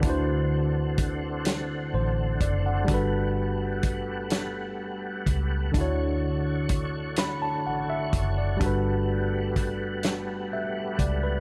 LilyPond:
<<
  \new Staff \with { instrumentName = "Tine electric piano" } { \time 6/8 \key d \major \tempo 4. = 42 << { b'16 r4. r16 c''8 d''16 fis''16~ | fis''16 r2 r8. | r4. b''16 a''16 fis''16 e''8 d''16~ | d''16 r4. r16 e''8 d''16 b'16 | } \\ { <d d' e' fis' c''>2. | <g d' fis' a' b'>2. | <d d' e' fis' cis''>2. | <g d' fis' a' b'>2. | } >> }
  \new Staff \with { instrumentName = "Tonewheel organ" } { \time 6/8 \key d \major << { <d c' fis'>2. | <g b fis'>2. | <d fis' cis''>2. | <g b fis'>2. | } \\ { a2.~ | a2.~ | a2.~ | a2. | } >> }
  \new Staff \with { instrumentName = "Fingered electric bass" } { \clef bass \time 6/8 \key d \major d,2 a,,8 fis,,8 | g,,2~ g,,8 cis,8 | d,2 a,,8 fis,,8 | g,,2~ g,,8 cis,8 | }
  \new DrumStaff \with { instrumentName = "Drums" } \drummode { \time 6/8 <hh bd>4 <hh bd>8 <hh sn>4 <hh bd>8 | <hh bd>4 <hh bd>8 <hh sn>4 <hh bd>8 | <hh bd>4 <hh bd>8 <hh sn>4 <hh bd>8 | <hh bd>4 <hh bd>8 <hh sn>4 <hh bd>8 | }
>>